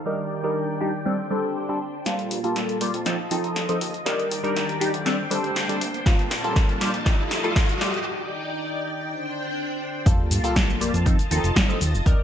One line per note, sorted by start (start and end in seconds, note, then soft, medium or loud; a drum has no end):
0.00 1.04 D#3 medium
0.06 0.41 G3 medium
0.06 0.41 D4 medium
0.06 0.41 D#4 medium
0.06 0.41 A#4 medium
0.06 1.05 D5 medium
0.06 2.04 G5 medium
0.43 0.78 G3 medium
0.43 0.78 D4 medium
0.43 0.78 D#4 medium
0.43 0.78 A#4 loud
0.80 0.91 G3 medium
0.80 0.91 D4 medium
0.80 0.91 D#4 medium
0.80 0.91 G4 loud
1.06 1.16 G3 medium
1.06 1.16 C4 medium
1.06 1.16 D4 medium
1.06 2.05 D4 medium
1.06 1.16 A4 loud
1.06 2.05 C5 medium
1.30 1.66 G3 medium
1.30 1.66 C4 medium
1.30 1.66 D4 medium
1.30 1.66 A4 loud
1.69 1.78 G3 medium
1.69 1.78 C4 medium
1.69 1.79 D4 medium
1.69 1.79 A4 medium
2.06 2.14 G2 loud
2.06 2.41 G3 medium
2.06 2.41 A#3 medium
2.06 3.05 A#3 medium
2.06 4.04 F4 medium
2.06 2.41 F4 medium
2.06 2.41 A4 medium
2.06 4.04 A5 medium
2.06 snare soft
2.06 closed hi-hat medium
2.06 riser medium
2.19 closed hi-hat soft
2.31 2.39 G2 medium
2.31 open hi-hat loud
2.44 2.78 G3 medium
2.44 2.78 A#3 medium
2.44 2.78 F4 medium
2.44 2.78 A4 loud
2.44 closed hi-hat soft
2.56 snare soft
2.56 closed hi-hat medium
2.69 closed hi-hat soft
2.81 2.91 G3 medium
2.81 2.91 A#3 medium
2.81 2.91 F4 medium
2.81 2.92 G4 loud
2.81 open hi-hat medium
2.94 3.19 F2 loud
2.94 closed hi-hat medium
3.06 3.16 F3 loud
3.06 3.16 C4 medium
3.06 3.16 D#4 medium
3.06 3.17 A4 loud
3.06 4.05 D#5 medium
3.06 snare medium
3.06 closed hi-hat medium
3.19 3.29 D#2 soft
3.31 3.39 D#2 medium
3.31 3.66 F3 medium
3.31 3.66 C4 medium
3.31 3.66 D#4 medium
3.31 3.66 A4 loud
3.31 open hi-hat loud
3.44 3.52 F1 loud
3.44 closed hi-hat soft
3.56 snare medium
3.56 closed hi-hat medium
3.69 3.78 F3 medium
3.69 3.78 C4 medium
3.69 3.79 D#4 medium
3.69 3.79 A4 medium
3.69 closed hi-hat medium
3.81 3.96 D#2 medium
3.81 open hi-hat medium
3.94 4.02 F1 loud
3.94 closed hi-hat soft
4.06 4.14 D#2 loud
4.06 5.05 D#3 medium
4.06 4.41 G3 medium
4.06 4.41 D4 medium
4.06 4.41 D#4 medium
4.06 4.41 A#4 medium
4.06 5.05 D5 medium
4.06 6.04 G5 medium
4.06 snare medium
4.06 closed hi-hat medium
4.19 4.29 D#2 soft
4.19 closed hi-hat soft
4.31 4.39 D#2 medium
4.31 open hi-hat loud
4.43 4.78 G3 medium
4.43 4.78 D4 medium
4.43 4.78 D#4 medium
4.43 4.78 A#4 loud
4.43 closed hi-hat soft
4.56 snare medium
4.56 closed hi-hat medium
4.69 closed hi-hat soft
4.80 4.91 G3 medium
4.80 4.91 D4 medium
4.80 4.91 D#4 medium
4.80 4.91 G4 loud
4.80 open hi-hat loud
4.94 5.18 D2 loud
4.94 closed hi-hat medium
5.06 5.16 G3 medium
5.06 5.16 C4 medium
5.06 5.16 D4 medium
5.06 6.05 D4 medium
5.06 5.16 A4 loud
5.06 6.05 C5 medium
5.06 snare medium
5.06 closed hi-hat medium
5.19 5.29 C2 soft
5.30 5.39 C2 loud
5.30 5.66 G3 medium
5.30 5.66 C4 medium
5.30 5.66 D4 medium
5.30 5.66 A4 loud
5.30 open hi-hat loud
5.44 5.52 D1 loud
5.44 closed hi-hat soft
5.56 snare medium
5.56 closed hi-hat medium
5.69 5.78 G3 medium
5.69 5.79 C4 medium
5.69 5.79 D4 medium
5.69 5.79 A4 loud
5.69 closed hi-hat medium
5.81 5.96 C2 medium
5.81 open hi-hat loud
5.94 6.02 D1 loud
5.94 closed hi-hat soft
6.06 6.14 G2 loud
6.06 6.41 G3 medium
6.06 6.41 A#3 medium
6.06 7.05 A#3 medium
6.06 7.04 F4 medium
6.06 6.41 F4 medium
6.06 6.41 A4 medium
6.06 8.04 A5 medium
6.06 kick loud
6.06 snare medium
6.06 closed hi-hat medium
6.19 closed hi-hat soft
6.31 6.39 G2 medium
6.31 snare medium
6.31 open hi-hat loud
6.44 6.78 G3 medium
6.44 6.78 A#3 medium
6.44 6.78 F4 medium
6.44 6.79 A4 loud
6.44 closed hi-hat soft
6.56 kick loud
6.56 snare medium
6.56 closed hi-hat medium
6.69 closed hi-hat soft
6.80 6.91 G3 medium
6.80 6.91 A#3 medium
6.80 6.91 F4 medium
6.80 6.91 G4 loud
6.80 snare medium
6.80 open hi-hat loud
6.94 7.18 F2 loud
6.94 closed hi-hat medium
7.05 7.41 G3 medium
7.05 7.41 A3 medium
7.05 8.05 F4 medium
7.05 7.41 F4 medium
7.05 7.41 A4 medium
7.05 8.05 D#5 medium
7.05 kick loud
7.05 snare medium
7.05 closed hi-hat medium
7.19 7.29 D#2 soft
7.31 7.39 D#2 loud
7.31 snare medium
7.31 open hi-hat loud
7.43 7.78 G3 medium
7.43 7.78 A3 medium
7.43 7.78 F4 medium
7.43 7.78 A4 loud
7.43 closed hi-hat soft
7.56 kick loud
7.56 snare medium
7.56 closed hi-hat medium
7.69 closed hi-hat medium
7.80 7.95 D#2 medium
7.80 7.91 G3 medium
7.80 7.91 A3 medium
7.80 7.91 F4 medium
7.80 7.91 G4 loud
7.80 snare medium
7.80 open hi-hat medium
7.94 8.01 F1 loud
7.94 closed hi-hat soft
8.06 9.05 D#4 medium
8.06 9.05 D5 medium
8.06 10.04 G5 medium
9.07 10.05 D4 medium
9.07 10.06 C5 medium
10.06 10.14 G2 loud
10.06 10.41 G3 medium
10.06 10.41 A#3 medium
10.06 11.05 A#3 medium
10.06 10.41 F4 medium
10.06 12.04 F4 medium
10.06 10.41 A4 medium
10.06 12.04 A5 medium
10.06 kick loud
10.06 closed hi-hat medium
10.06 sub drop medium
10.06 shaker soft
10.31 10.39 G2 medium
10.31 open hi-hat loud
10.31 shaker medium
10.43 10.78 G3 medium
10.43 10.78 A#3 medium
10.43 10.78 F4 medium
10.43 10.78 A4 loud
10.43 closed hi-hat medium
10.43 shaker soft
10.56 kick loud
10.56 snare loud
10.56 closed hi-hat medium
10.56 shaker soft
10.70 shaker soft
10.80 10.92 F2 soft
10.80 10.91 G3 loud
10.80 10.91 A#3 medium
10.80 10.91 F4 medium
10.80 10.91 G4 loud
10.80 open hi-hat medium
10.80 shaker medium
10.94 11.18 F2 loud
10.94 closed hi-hat medium
10.94 shaker soft
11.05 11.16 F3 loud
11.05 11.16 C4 medium
11.05 11.16 D#4 medium
11.05 11.16 A4 loud
11.05 12.05 D#5 medium
11.05 kick loud
11.05 closed hi-hat medium
11.05 shaker soft
11.19 11.29 D#2 soft
11.19 closed hi-hat medium
11.19 shaker soft
11.31 11.39 D#2 loud
11.31 11.66 F3 medium
11.31 11.66 C4 medium
11.31 11.66 D#4 medium
11.31 11.66 A4 loud
11.31 open hi-hat loud
11.31 shaker medium
11.44 11.52 F1 loud
11.44 closed hi-hat medium
11.44 shaker soft
11.56 kick loud
11.56 snare loud
11.56 closed hi-hat medium
11.56 shaker soft
11.68 11.78 F3 medium
11.68 11.78 C4 medium
11.68 11.78 D#4 medium
11.68 11.79 A4 loud
11.68 shaker soft
11.81 11.96 D#2 medium
11.81 open hi-hat medium
11.81 shaker medium
11.94 12.02 F1 loud
11.94 shaker soft
12.06 12.14 D#2 loud
12.06 12.23 D#3 medium
12.06 12.23 G3 medium
12.06 12.23 D4 medium
12.06 12.23 D#4 medium
12.06 12.23 A#4 medium
12.06 12.23 D5 medium
12.06 12.23 G5 medium
12.06 kick loud
12.06 closed hi-hat medium
12.06 shaker soft
12.19 12.23 D#2 soft